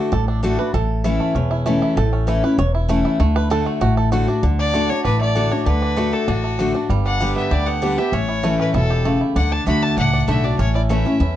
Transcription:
Already playing: D3 A3 D4 F#4
0.12 A1 A2 A4
0.28 D4
0.43 D3 A3 D4 F#4
0.58 D4 F#4 B4
0.74 A1 A2 A4
1.04 E3 A3 C#4 E4
1.20 A3
1.35 E1 E2 C#4
1.51 E4
1.66 E3 A3 C#4 E4
1.82 E4
1.97 A1 A2 A4
2.13 C#4
2.27 E3 A3 C#4 E4
2.44 C#4 E4 B4
2.58 E1 E2 C#5
2.75 E4
2.88 E3 A3 C#4 E4
3.05 E4
3.20 D2 D3 A3
3.36 B4
3.50 D3 A3 D4 F#4 A4
3.66 A3
3.81 A1 A2 F#4
3.97 A4
4.12 D3 A3 D4 F#4
4.27 D4 F#4
4.43 D2 D3
4.59 D4 D5
4.74 D3 A3 D4 F#4
4.89 D4 F#4 C#5
5.04 A1 A2 D4 B4
5.21 A3 D5
5.35 D3 A3 D4 F#4
5.51 D4 F#4 C#5
5.66 D2 D3 B4
5.82 D4
5.96 D3 A3 D4 F#4
6.13 D4 A4
6.28 A1 A2 D4 F#4
6.44 A3
6.59 D3 A3 D4 F#4
6.74 D4 F#4
6.89 G1 G2 G3
7.06 D4 F#5
7.20 D3 G3 B3 G4
7.36 B3 E5
7.51 D2 D3 G4 D5
7.67 B3 F#5
7.82 D3 G3 B3 D4 G4
7.98 B3 G4 E5
8.12 A1 A2 C#4 C#5
8.29 E4
8.43 E3 A3 C#4 E4
8.60 C#4 B4
8.74 E1 B2 E4 A4
8.90 G4
9.05 C#3 A3
9.21 E4
9.36 D2 D3 D4 F#5
9.52 D4 A5
9.67 D2 D3 A3 D4 F#4 B5
9.83 D4 A5
9.97 C#2 A2 D4 F#5
10.13 D4
10.28 B1 D3 A3 D4 F#4 E5
10.44 D4 F#4 D5
10.59 A1 A2 C#4 C#5
10.75 E4 D5
10.89 E3 A3 C#4 E4 E5
11.05 C#4 E4
11.20 E2 E4

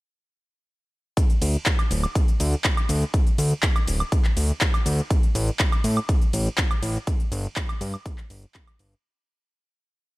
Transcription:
1.17 kick, closed hi-hat, ride, cabasa
1.30 closed hi-hat, cabasa
1.42 D2, open hi-hat, ride, cabasa
1.54 closed hi-hat, cabasa
1.66 kick, clap, closed hi-hat, ride, cabasa
1.79 closed hi-hat, cabasa, high woodblock
1.91 D1, open hi-hat, ride, cabasa
2.04 closed hi-hat, cabasa, high woodblock
2.15 kick, closed hi-hat, ride, cabasa
2.28 closed hi-hat, cabasa
2.40 D2, open hi-hat, ride, cabasa
2.53 closed hi-hat, cabasa
2.64 kick, clap, closed hi-hat, ride, cabasa
2.77 closed hi-hat, cabasa, high woodblock
2.89 D2, open hi-hat, ride, cabasa
3.02 closed hi-hat, cabasa
3.14 kick, closed hi-hat, ride, cabasa
3.27 closed hi-hat, cabasa
3.38 D2, open hi-hat, ride, cabasa
3.51 closed hi-hat, cabasa
3.63 kick, clap, closed hi-hat, ride, cabasa
3.76 closed hi-hat, cabasa, high woodblock
3.87 D1, open hi-hat, ride, cabasa
4.00 closed hi-hat, cabasa, high woodblock
4.12 kick, closed hi-hat, ride, cabasa
4.25 clap, closed hi-hat, cabasa
4.37 D2, open hi-hat, ride, cabasa
4.50 cabasa
4.61 kick, clap, closed hi-hat, ride, cabasa
4.74 closed hi-hat, cabasa, high woodblock
4.86 D2, open hi-hat, ride, cabasa
4.99 closed hi-hat, cabasa
5.10 kick, closed hi-hat, ride, cabasa
5.23 closed hi-hat, cabasa
5.35 A1, open hi-hat, ride, cabasa
5.48 closed hi-hat, cabasa
5.59 kick, clap, closed hi-hat, ride, cabasa
5.72 closed hi-hat, cabasa, high woodblock
5.84 A2, open hi-hat, ride, cabasa
5.97 closed hi-hat, cabasa, high woodblock
6.09 kick, closed hi-hat, ride, cabasa
6.22 closed hi-hat, cabasa
6.33 A1, open hi-hat, ride, cabasa
6.46 closed hi-hat, cabasa
6.58 kick, clap, closed hi-hat, ride, cabasa
6.71 closed hi-hat, cabasa, high woodblock
6.83 A1, open hi-hat, ride, cabasa
6.95 closed hi-hat, cabasa
7.07 kick, closed hi-hat, ride, cabasa
7.20 closed hi-hat, cabasa
7.32 G1, open hi-hat, ride, cabasa
7.45 closed hi-hat, cabasa
7.56 kick, clap, closed hi-hat, ride, cabasa
7.69 closed hi-hat, cabasa, high woodblock
7.81 G2, open hi-hat, ride, cabasa
7.94 closed hi-hat, cabasa, high woodblock
8.06 kick, closed hi-hat, ride, cabasa
8.18 clap, closed hi-hat, cabasa
8.30 G1, open hi-hat, ride, cabasa
8.43 closed hi-hat, cabasa
8.54 kick, clap, closed hi-hat, ride, cabasa
8.67 closed hi-hat, cabasa, high woodblock
8.79 G1, open hi-hat, ride, cabasa
8.92 closed hi-hat, cabasa

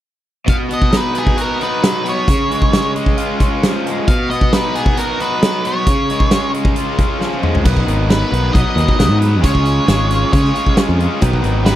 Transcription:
0.46 B2 F5, kick, closed hi-hat
0.69 B3, closed hi-hat
0.73 D#5
0.82 kick
0.90 D#4, snare, closed hi-hat
0.97 B4
1.15 B3 G#4, closed hi-hat
1.27 kick
1.38 F#4 A#4, closed hi-hat
1.60 D#4 B4, closed hi-hat
1.82 F#3, snare, closed hi-hat
2.04 B3, closed hi-hat
2.09 C#5
2.28 C#3, kick, closed hi-hat
2.50 G#3, closed hi-hat
2.62 kick
2.73 C#4, snare, closed hi-hat
2.96 G#3, closed hi-hat
3.06 kick
3.17 F4, closed hi-hat
3.40 C#4, kick, closed hi-hat
3.63 F3, snare, closed hi-hat
3.86 G#3, closed hi-hat
4.08 B2 F5, kick, closed hi-hat
4.30 B3 D#5, closed hi-hat
4.41 kick
4.53 D#4 B4, snare, closed hi-hat
4.75 B3 G#4, closed hi-hat
4.86 kick
4.97 F#4 A#4, closed hi-hat
5.20 D#4 B4, closed hi-hat
5.42 F#3, snare, closed hi-hat
5.65 B3 C#5, closed hi-hat
5.87 C#3, kick, closed hi-hat
6.10 G#3, closed hi-hat
6.20 kick
6.31 C#4, snare, closed hi-hat
6.54 G#3, closed hi-hat
6.65 kick
6.76 F4, closed hi-hat
6.99 C#4, kick, closed hi-hat
7.19 F3, snare
7.42 G#3, mid tom
7.55 floor tom
7.63 B1 B2 D#3 F#3 B3 D#4 B4, kick, crash
7.77 kick
7.85 G#1 F#3 B3 D#4 B4, closed hi-hat
8.08 B2 D#3 F#3 B3 D#4 B4, snare, closed hi-hat
8.31 B1 F#3 B3 D#4 B4, closed hi-hat
8.53 B1 F#3 B3 D#4 B4 D#5, kick, closed hi-hat
8.75 D#2 B2 D#3 F#3 B3 D#4 B4, closed hi-hat
8.88 kick
8.98 B1 F#3 B3 D#4 B4, snare, closed hi-hat
9.10 G#2
9.19 F#3 B3 D#4 B4, closed hi-hat
9.41 C#2 C#3 G#3 C#4 F4 G#4 C#5, kick, closed hi-hat
9.55 kick
9.62 C#4 F4 G#4, closed hi-hat
9.86 G#1 C#3 G#3 C#4 F4 G#4, snare, closed hi-hat
10.08 C#4 F4 G#4, closed hi-hat
10.32 C#3 G#3 C#4 F4 G#4 C#5, kick, closed hi-hat
10.45 snare
10.54 C#3 G#3 C#4 F4 G#4, closed hi-hat
10.67 kick
10.77 G#3 C#4 F4 G#4, snare, closed hi-hat
10.89 F2
10.98 C#4 F4 G#4, closed hi-hat
11.21 B1 B2 D#3 F#3 B3 D#4 B4, kick, closed hi-hat
11.33 kick
11.41 G#1 F#3 B3 D#4 B4, closed hi-hat
11.63 B2 D#3 F#3 B3 D#4 B4, snare, closed hi-hat

